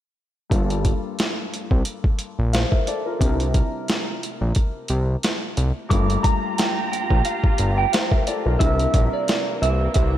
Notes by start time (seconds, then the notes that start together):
0.50 G1 G2 G3 A#3, kick, closed hi-hat
0.54 F4 A4
0.70 closed hi-hat
0.85 kick, closed hi-hat
1.19 snare, closed hi-hat
1.54 closed hi-hat
1.71 C2, kick
1.85 closed hi-hat
2.04 kick
2.19 closed hi-hat
2.39 A#1
2.53 C5 F5, snare, closed hi-hat
2.71 A#4 E5, kick
2.87 A4 D5, closed hi-hat
3.06 F4 A#4
3.19 C2 C3 G3 D4, kick, closed hi-hat
3.23 E4 A#4
3.40 closed hi-hat
3.54 kick, closed hi-hat
3.88 snare, closed hi-hat
4.23 closed hi-hat
4.41 A#1
4.55 kick, closed hi-hat
4.88 C2, closed hi-hat
5.23 snare, closed hi-hat
5.57 C2, closed hi-hat
5.89 G1 G2 G3 A#3 F4 G4 A#5 D6, kick, closed hi-hat
5.93 A3 F4
6.10 closed hi-hat
6.23 A#5, kick, closed hi-hat
6.58 G5, snare, closed hi-hat
6.92 G5, closed hi-hat
7.10 A#1, kick
7.25 F5, closed hi-hat
7.44 G1, kick
7.58 G1, closed hi-hat
7.78 G5
7.92 C5 F5, snare, closed hi-hat
8.11 A#4 E5, kick
8.27 A4 D5, closed hi-hat
8.45 B1 F4 A#4
8.59 C2 C3 E3 G3 A#3 D4 E5, kick, closed hi-hat
8.63 E4 A#4
8.79 closed hi-hat
8.94 A#1, kick, closed hi-hat
9.13 D5
9.28 snare, closed hi-hat
9.62 C2 E5, closed hi-hat
9.94 C2 E5, kick, closed hi-hat